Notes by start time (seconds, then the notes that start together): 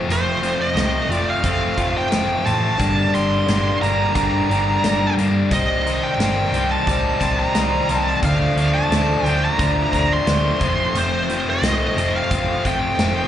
Already playing: A4
0.08 F1 F2 C3 F3 A3 C4, closed hi-hat
0.12 C5
0.41 F2 C3 F3 A3 C4, closed hi-hat
0.62 D#5
0.75 C2 F2 C3 F3 A3 C4, snare, closed hi-hat
1.09 F1 F2 C3 F3 A3 C4 F4 D5, closed hi-hat
1.30 F5
1.43 F1 F2 C3 F3 A3 C4 A4, kick, closed hi-hat
1.76 F1 F2 C3 F3 A3 C4 F4, kick, closed hi-hat
1.98 G5
2.10 F1 F2 C3 F3 A3 C4, snare, closed hi-hat
2.44 A1 F2 C3 F3 A3 C4 A5, closed hi-hat
2.77 G1 G2 D3 G3 A#3 D4, kick, closed hi-hat
3.12 G1 G2 D3 G3 A#3 D4 C6, closed hi-hat
3.47 G1 G2 D3 G3 A#3 D4, snare, closed hi-hat
3.81 G1 G2 D3 G3 A#3 D4 A#5, closed hi-hat
4.15 G1 G2 D3 G3 A#3 D4 A#5, kick, closed hi-hat
4.49 G1 G2 D3 G3 A#3 D4, closed hi-hat
4.84 G1 G2 D3 G3 A#3 D4, snare, closed hi-hat
5.17 G2 D3 G3 A#3 D4, closed hi-hat
5.51 C2 C3 G3 C4 D#4 D#5, kick, closed hi-hat
5.85 C3 D#3 G3 C4 D#4, closed hi-hat
6.03 G5
6.18 G1 C3 G3 A#3 C4 D#4, snare, closed hi-hat
6.52 C2 C3 G3, closed hi-hat
6.56 C4 D#4
6.71 A5
6.87 C2 C3 G3 C4 D#4 G4, kick, closed hi-hat
7.21 C2 C3 G3 C4 D#4, kick, closed hi-hat
7.39 A#5
7.55 C2 C3 D#3 G3 C4 D#4, snare, closed hi-hat
7.89 C2 C3 G3 A#3 C4 D#4, closed hi-hat
7.94 A5
8.23 D2 D3 F3 A3 D4 F5, kick, closed hi-hat
8.56 D2 D3 F3 A3 D4, closed hi-hat
8.74 A5
8.89 D2 D3 F3, snare, closed hi-hat
8.94 A3 D4
9.23 D2 D3 F3 C4 G5, closed hi-hat
9.28 A3 D4
9.45 A#5
9.58 D2 D3 F3 A3 D4 F4, kick, closed hi-hat
9.93 D2 D3 F3 A3 C4 D4, kick, closed hi-hat
10.13 C6
10.26 D2 D3 F3 A3 D4, snare, closed hi-hat
10.60 F1 F2 C3 F3 A3 C4, kick, closed hi-hat
10.93 F1 F2 C3 F3 A3 C4, closed hi-hat
10.98 C5
11.29 F2 C3 F3 A3 C4, closed hi-hat
11.50 D#5
11.62 C2 F2 C3 F3 A3 C4, snare, closed hi-hat
11.97 F1 F2 C3 F3 A3 C4, closed hi-hat
12.16 F5
12.31 F1 F2 C3 F3 A3 C4 F4, kick, closed hi-hat
12.65 F1 F2 C3 F3 A3 C4 G5, kick, closed hi-hat
12.98 F1 F2 C3 F3 A3 C4, snare, closed hi-hat